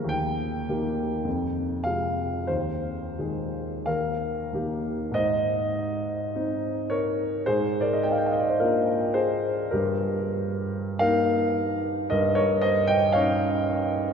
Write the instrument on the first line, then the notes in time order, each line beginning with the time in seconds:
grand piano
Already playing: F3 A#3 G#4 A#4
0.04 D#2
0.09 G5
0.69 D#3 A#3 G4
1.25 F2
1.84 C3 G#3 F4 F5
2.47 D#2 C5
3.19 D#3 G#3 G#4
3.86 D#2 A#4 F5
4.53 D#3 A#3 G4
5.11 G#2 C5 D#5
6.36 C4 D#4
6.90 A#4 C#5
7.46 G#2 G#4 C5
7.81 A#4 D5
7.93 D#5
8.03 G5
8.11 F5
8.18 G5
8.26 F5
8.32 D#5
8.39 D5
8.50 C5
8.60 A#3 D4 F4 A#4
9.14 G#4 C5
9.71 G2 G4 A#4
10.99 A#3 D#4 A#4 F5
12.10 G2 A#4 D#5
12.35 A#4 C#5
12.61 C5 D#5
12.87 D#5 G5
13.12 C#4 D#4 C#5 F5